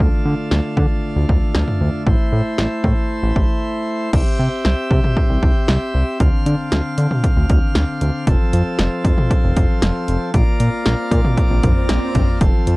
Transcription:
Already playing: F4
0.00 D3 A3, kick
0.25 D3
0.51 D2, snare
0.77 D3, kick
1.16 D2
1.29 D2, kick
1.55 D2, snare
1.68 mid tom
1.81 D2
2.07 A1 E4 C5, kick
2.32 A2
2.58 A1, snare
2.84 A2, kick
3.23 A1
3.36 A1, kick
4.13 C2 C4 G4 E5, kick, crash
4.39 C3
4.65 C2, snare
4.91 C3, kick
5.04 mid tom
5.17 kick
5.30 C2
5.43 C2, kick
5.68 C2, snare
5.94 C2
6.20 D2 D3 F5, kick, closed hi-hat
6.46 D3, closed hi-hat
6.72 D2, snare, closed hi-hat
6.98 D3, closed hi-hat
7.11 mid tom
7.24 kick, closed hi-hat
7.37 D2
7.50 D2, kick, closed hi-hat
7.75 D2, snare, closed hi-hat
8.01 D2, closed hi-hat
8.27 F1 F3 A4, kick, closed hi-hat, swell
8.53 F2, closed hi-hat
8.79 F1, snare, closed hi-hat
9.04 F2, kick, closed hi-hat
9.18 mid tom
9.31 kick, closed hi-hat
9.44 F1
9.56 F1, kick, closed hi-hat
9.82 F1, snare, closed hi-hat
10.08 F1, closed hi-hat
10.34 A#1 A#3 F4 D5, kick, closed hi-hat
10.60 A#2, closed hi-hat
10.86 A#1, snare, closed hi-hat
11.11 A#2, kick, closed hi-hat
11.25 mid tom
11.37 kick, closed hi-hat
11.50 A#1
11.63 A#1, kick, closed hi-hat, mid tom
11.89 A#1, snare, closed hi-hat
12.15 A#1, kick, closed hi-hat, mid tom
12.41 F1 F3 C4 A4, kick, closed hi-hat
12.67 F2, closed hi-hat

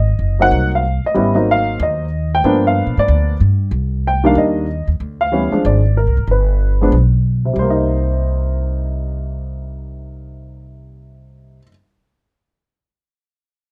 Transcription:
Already playing: G#1 D#5
0.19 F#1
0.39 F#3 A#3 C4 D#4 F#5
0.51 C2
0.75 F5
1.04 D#5, muted upright bass stroke
1.14 G#1 G3 B3 C#4 E4
1.34 F#3 A#3 C4 D#4
1.51 F5
1.80 D#2 D#5
2.35 G5
2.44 G2 F3 A#3 B3 D4
2.67 F5
2.87 A#2
2.97 G#2 D5
3.08 D2
3.40 G2
3.71 C2
4.07 G5
4.24 D#3 G3 A#3 D4 F5
4.35 D#2 D#5
4.87 D#2
5.00 D2
5.21 F5
5.32 E3 G3 B3 C#4
5.52 F3 G#3 C4 D4, muted upright bass stroke
5.65 G#1 D5
5.97 A#4
6.07 C2
6.17 G#1
6.27 G1 B4
6.81 F3 G#3 B3 D4
6.92 B1
7.45 C3
7.53 C2 G3
7.59 A#3 C5
7.70 D#4

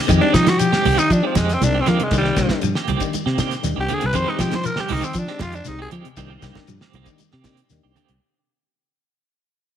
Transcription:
0.07 F2 D#3 G#3 C4 D#4 G4, muted clean electric guitar stroke, kick, closed hi-hat, shekere
0.21 D#3 G#3 C4 D4 G4, high conga
0.34 D#3 F3 G3 G#3 D#4 G4, kick, snare, closed hi-hat, shekere
0.47 F#4, snare, closed hi-hat, high conga, shekere
0.59 F3 G4, closed hi-hat, shekere
0.72 G#3 C4 G4, snare, high conga, shekere
0.85 C2 D#3 G#3 C4 G4, open hi-hat, high conga, low conga
0.98 D#3 D#4, closed hi-hat, shekere
1.10 F3 D4, kick, closed hi-hat, shekere
1.23 F3 G#3 C4 D#4 F4 G4
1.35 F2 G#3 C4 G4, kick, snare, closed hi-hat, high conga, shekere
1.49 snare, closed hi-hat, shekere
1.54 C4
1.61 C2 G#3 C4 D4 D#4 A#4, snare, closed hi-hat, high conga, shekere
1.75 G#3 C4 G4
1.81 C4
1.86 D3 D#3 F3 G#3 A#3 C4 G4, snare, closed hi-hat, low conga, shekere
2.00 C3, closed hi-hat, high conga
2.04 G#3
2.11 C2 D#3 A#3 C4 D4 D#4 G4, kick, closed hi-hat, shekere
2.18 G3
2.24 D#3 A#3 C4 G4, snare
2.36 C2 D#3 G3 A#3 C4 D4 D#4 G4, kick, snare, closed hi-hat, shekere
2.49 kick, snare, high conga, shekere
2.62 G2 F3, closed hi-hat, shekere
2.75 A#3 G4, snare, shekere
2.88 C2 D#3 A#3 C4 G4, closed hi-hat, high conga, low conga
3.00 D#3 A#3 D4 D#4 G4, kick, closed hi-hat, shekere
3.13 muted fingered electric bass stroke, closed hi-hat, high conga, shekere
3.26 C3 A#3 C4 G4, snare
3.37 D#3 A#3 C4 D4 D#4 G4, kick, snare, closed hi-hat, high conga, shekere
3.51 snare, closed hi-hat, shekere
3.63 D#2 A#3 D4 D#4 G4, snare, closed hi-hat, high conga, shekere
3.76 C2 A#3 C4 G4
3.80 G4
3.88 D3 D#3 A#3 C4 G4, closed hi-hat, low conga, shekere
3.94 G#4
4.01 C2 C3, closed hi-hat
4.06 B4
4.13 F2 D#3 G#3 C4 D#4 G4 C5, kick, closed hi-hat, shekere
4.27 D#3 G#3 C4 D#4 G4, high conga
4.39 D#3 F3 G3 G#3 C4 G4, kick, snare, closed hi-hat, shekere
4.51 C5, snare, closed hi-hat, high conga, shekere
4.64 F3 A#4, closed hi-hat, shekere
4.76 G#3 C4 G4, snare, high conga, shekere
4.80 G4
4.88 C2 D#3 G#3 C4 D#4 G4, open hi-hat, high conga, low conga
5.02 D#3 C4, closed hi-hat, shekere
5.13 F3, kick, closed hi-hat, shekere
5.19 D4
5.27 G#3 C4 D#4 G4, muted clean electric guitar stroke, snare
5.39 F2 D#3 G#3 F4 G4, muted clean electric guitar stroke, kick, snare, closed hi-hat, high conga, shekere
5.52 D4, closed hi-hat, shekere
5.65 C2 G#3 C4 D#4 G4, snare, closed hi-hat, high conga, shekere
5.79 G#3 C4 G4 G#4
5.91 D#3 F3 G#3 C4 G4, closed hi-hat, low conga, shekere
6.05 C3, closed hi-hat
6.17 C2 D#3 A#3 C4 D4 D#4 G4, kick, closed hi-hat, shekere
6.30 D#3 A#3 C4 G4
6.42 C2 D#3 G3 A#3 C4 D4 D#4 G4 A#4, kick, snare, closed hi-hat, shekere
6.55 kick, snare, high conga, shekere
6.67 G2 F3, closed hi-hat, shekere
6.81 A#3 C4 G4, snare, high conga, shekere
6.93 C2 D#3 A#3 C4 G4, closed hi-hat, high conga, low conga
7.06 D#3 A#3 D4 D#4 G4, kick, closed hi-hat, shekere
7.18 muted fingered electric bass stroke, closed hi-hat, high conga, shekere
7.31 C3 A#3 C4 G4, snare
7.44 D#3 A#3 C4 D4 D#4 G4, kick, snare, closed hi-hat, high conga, shekere
7.57 closed hi-hat, shekere
7.70 D#2 A#3 D4 D#4 G4, snare, closed hi-hat, high conga, shekere
7.83 C2 A#3 C4 G4
7.96 D3 D#3 A#3 C4 G4, closed hi-hat, low conga, shekere
8.09 C2 C3, closed hi-hat

